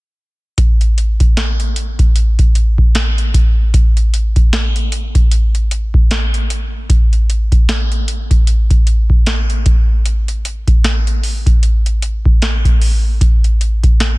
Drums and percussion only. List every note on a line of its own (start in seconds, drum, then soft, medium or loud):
0.58 kick loud
0.58 closed hi-hat medium
0.81 closed hi-hat soft
0.98 closed hi-hat medium
1.20 kick medium
1.20 closed hi-hat soft
1.37 snare loud
1.37 closed hi-hat medium
1.60 closed hi-hat soft
1.76 closed hi-hat medium
1.99 kick loud
1.99 closed hi-hat soft
2.16 closed hi-hat medium
2.39 kick medium
2.39 closed hi-hat soft
2.55 closed hi-hat medium
2.78 kick medium
2.95 snare loud
2.95 closed hi-hat medium
3.18 closed hi-hat soft
3.34 kick medium
3.34 closed hi-hat medium
3.74 kick loud
3.74 closed hi-hat medium
3.97 closed hi-hat soft
4.14 closed hi-hat medium
4.36 kick medium
4.36 closed hi-hat soft
4.53 snare loud
4.53 closed hi-hat medium
4.76 closed hi-hat soft
4.92 closed hi-hat medium
5.15 kick loud
5.15 closed hi-hat medium
5.31 closed hi-hat medium
5.55 closed hi-hat soft
5.71 closed hi-hat medium
5.94 kick medium
6.11 snare loud
6.11 closed hi-hat medium
6.34 closed hi-hat soft
6.50 closed hi-hat medium
6.90 kick loud
6.90 closed hi-hat medium
7.13 closed hi-hat soft
7.30 closed hi-hat medium
7.52 kick loud
7.52 closed hi-hat soft
7.69 snare loud
7.69 closed hi-hat medium
7.92 closed hi-hat soft
8.08 closed hi-hat medium
8.31 kick loud
8.31 closed hi-hat medium
8.47 closed hi-hat medium
8.70 kick medium
8.70 closed hi-hat soft
8.87 closed hi-hat medium
9.10 kick medium
9.26 snare loud
9.26 closed hi-hat medium
9.50 closed hi-hat soft
9.66 kick loud
9.66 closed hi-hat medium
10.06 closed hi-hat medium
10.28 closed hi-hat soft
10.45 closed hi-hat medium
10.68 kick loud
10.68 closed hi-hat soft
10.84 snare loud
10.84 closed hi-hat medium
11.07 closed hi-hat soft
11.23 open hi-hat soft
11.46 kick loud
11.46 closed hi-hat medium
11.63 closed hi-hat medium
11.86 closed hi-hat medium
12.02 closed hi-hat medium
12.25 kick loud
12.42 snare loud
12.42 closed hi-hat medium
12.65 kick loud
12.65 closed hi-hat soft
12.82 open hi-hat medium
13.21 kick loud
13.21 closed hi-hat medium
13.44 closed hi-hat soft
13.61 closed hi-hat medium
13.83 kick medium
13.83 closed hi-hat soft
14.00 snare loud
14.00 closed hi-hat medium